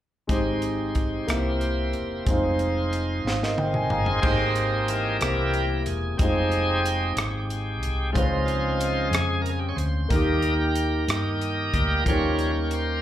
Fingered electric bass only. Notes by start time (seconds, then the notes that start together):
0.29 G#1
1.28 C2
1.94 E1
2.27 F1
3.25 G#1
3.90 G1
4.23 G#1
5.21 C2
5.87 E1
6.19 F1
7.16 G#1
7.81 C2
8.15 C#2
9.11 F2
9.77 D2
10.10 D#2
11.08 G2
11.74 D2
12.06 D#2